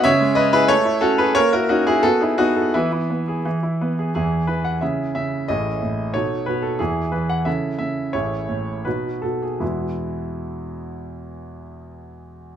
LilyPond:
<<
  \new Staff \with { instrumentName = "Grand piano" } { \time 2/4 \key e \major \tempo 4 = 88 << { <cis'' e''>8 <b' dis''>16 <gis' b'>16 <a' cis''>8 <fis' a'>16 <gis' b'>16 | <ais' cis''>16 <fis' ais'>16 <dis' fis'>16 <e' gis'>16 <fis' a'>16 <e' gis'>16 <dis' fis'>8 | <b e'>4 r4 | gis'8 b'16 fis''16 e''8 e''8 |
dis''4 cis''8 b'16 a'16 | gis'8 b'16 fis''16 e''8 e''8 | cis''4 b'8 a'16 gis'16 | <e, b, gis b e'>2~ |
<e, b, gis b e'>2 | } \\ { r2 | r2 | r2 | e'4 <e' gis'>4 |
<e' gis'>4 <dis' a'>4 | e'4 <e' a'>4 | <e' gis'>4 <dis' fis'>4 | r2 |
r2 | } >> }
  \new Staff \with { instrumentName = "Grand piano" } { \clef bass \time 2/4 \key e \major cis16 gis16 cis'16 e'16 a16 e'16 cis'16 fis'16 | ais16 e'16 cis'16 fis'16 b16 dis'16 b16 a'16 | e16 e'16 b16 gis'16 e16 e'16 b16 gis'16 | <e, e>8 e8 cis8 cis8 |
<a,, a,>8 a,8 b,8 b,8 | <e, e>8 e8 cis8 cis8 | <a,, a,>8 a,8 b,8 b,8 | r2 |
r2 | }
>>